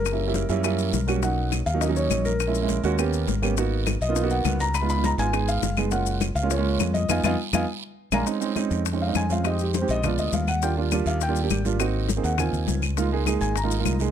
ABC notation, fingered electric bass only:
X:1
M:4/4
L:1/8
Q:1/4=204
K:Gb
V:1 name="Fingered electric bass" clef=bass
G,,,3 G,,3 C,,2- | C,,3 ^D,,3 ^A,,,2- | ^A,,,3 E,,3 _A,,,2- | A,,,3 C,,3 D,,2- |
D,,3 A,,,3 G,,,2- | G,,,3 D,,3 F,,2 | F,, F,, z F,, z3 B,,, | [K:Db] z3 F,,3 F,,2- |
F,,3 B,,,2 =D,, E,,2- | E,,3 E,,3 A,,,2- | A,,,3 E,,2 E,, D,,2- | D,,3 A,,,3 C,,2 |]